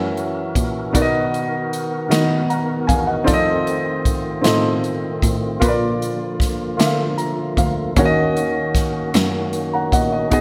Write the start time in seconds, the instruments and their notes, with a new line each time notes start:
Already playing: cello F#2, tonewheel organ E3 C#4 F#4 A#4, grand piano C#4 E4 F#4 A#4 E5
0.17 closed hi-hat
0.55 cello A#2, kick, closed hi-hat
0.93 grand piano B2 B3 D#4 F#4 A#4 D5, cello B2, tonewheel organ D#3 B3, kick, closed hi-hat
1.02 grand piano D#5
1.34 closed hi-hat
1.73 closed hi-hat
2.08 cello D#3, grand piano B3 D#4 F#4 A#4 D#5, snare, closed hi-hat
2.50 grand piano F#5 A#5, closed hi-hat
2.87 cello E2, grand piano F5 G#5, kick, closed hi-hat
3.07 grand piano D#5 F#5
3.24 cello F2, grand piano C4 D#4 F4 A4 D5, kick, closed hi-hat
3.29 tonewheel organ A3 C4 F4
3.34 grand piano D#5
3.67 closed hi-hat
4.05 kick, closed hi-hat
4.42 cello A2, grand piano C4 D#4 F4 A4 D#5, snare, closed hi-hat
4.84 closed hi-hat
5.22 cello A2, kick, closed hi-hat
5.60 grand piano A#2 F4 A#4 B4, cello A#2, tonewheel organ D3 F3 A#3, kick, closed hi-hat
5.68 grand piano D5
6.02 closed hi-hat
6.40 kick, snare, closed hi-hat
6.77 cello D3, grand piano F4 A#4 E5, snare, closed hi-hat
6.86 grand piano F5
7.18 grand piano A#5, closed hi-hat
7.57 cello D2, grand piano F5, kick, closed hi-hat
7.96 cello D#2, tonewheel organ D#3 C#4 F#4, grand piano D#3 C#4 D#4 F#4 A#4 C#5, kick, closed hi-hat
8.05 grand piano D#5
8.37 closed hi-hat
8.75 kick, snare, closed hi-hat
9.14 cello F#2, snare, closed hi-hat
9.53 closed hi-hat
9.73 grand piano F#5 A#5
9.92 cello A#2, grand piano D#5 F#5, kick, closed hi-hat
10.13 grand piano D#5
10.31 grand piano B2 B3 D#4 F#4 G#4 D#5, cello B2, tonewheel organ B2 G#3 B3, kick, closed hi-hat